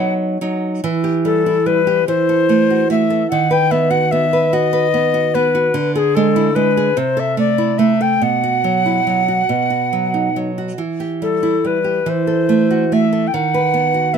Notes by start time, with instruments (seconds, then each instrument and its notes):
Already playing: nylon-string guitar F#3 D#4, recorder F#5
0.41 nylon-string guitar F#3 D#4
0.84 nylon-string guitar E3
1.04 nylon-string guitar G4
1.25 nylon-string guitar G3, recorder A4
1.46 nylon-string guitar E4
1.66 nylon-string guitar G3, recorder B4
1.87 nylon-string guitar G4
2.07 nylon-string guitar E3, recorder C5
2.29 nylon-string guitar A4
2.49 nylon-string guitar A3
2.70 nylon-string guitar F#4
2.90 nylon-string guitar A3, recorder E5
3.10 nylon-string guitar A4
3.30 nylon-string guitar D#3, recorder F#5
3.51 nylon-string guitar B4, recorder G5
3.71 nylon-string guitar B3, recorder E5
3.90 nylon-string guitar F#4, recorder F#5
4.11 nylon-string guitar B3, recorder E5
4.33 nylon-string guitar B4
4.53 nylon-string guitar F#4, recorder D#5
4.73 nylon-string guitar B4
4.94 nylon-string guitar B3
5.14 nylon-string guitar F#4
5.34 nylon-string guitar B3, recorder B4
5.55 nylon-string guitar F#4
5.74 nylon-string guitar D3
5.95 nylon-string guitar G#4, recorder G#4 A4
6.15 nylon-string guitar G#3, recorder A4
6.36 nylon-string guitar E4
6.55 nylon-string guitar G#3, recorder B4
6.77 nylon-string guitar G#4
6.97 nylon-string guitar C3, recorder C5
7.17 nylon-string guitar A4, recorder E5
7.37 nylon-string guitar A3, recorder D5
7.58 nylon-string guitar E4
7.78 nylon-string guitar A3, recorder E5
8.01 nylon-string guitar A4, recorder G5
8.21 nylon-string guitar B2, recorder F#5
8.43 nylon-string guitar F#4
8.64 nylon-string guitar F#3
8.86 nylon-string guitar E4
9.07 nylon-string guitar F#3
9.28 nylon-string guitar F#4
9.49 nylon-string guitar B2
9.70 nylon-string guitar F#4
9.93 nylon-string guitar F#3
10.14 nylon-string guitar D#4
10.36 nylon-string guitar F#3
10.58 nylon-string guitar F#4
10.78 nylon-string guitar E3
11.00 nylon-string guitar G4
11.22 nylon-string guitar G3, recorder A4
11.43 nylon-string guitar E4
11.65 nylon-string guitar G3, recorder B4
11.84 nylon-string guitar G4
12.06 nylon-string guitar E3, recorder C5
12.27 nylon-string guitar A4
12.49 nylon-string guitar A3
12.71 nylon-string guitar F#4
12.92 nylon-string guitar A3, recorder E5
13.13 nylon-string guitar A4
13.27 recorder G5
13.33 nylon-string guitar D#3, recorder F#5
13.54 nylon-string guitar B4
13.74 nylon-string guitar B3
13.94 nylon-string guitar F#4
14.14 nylon-string guitar B3, recorder E5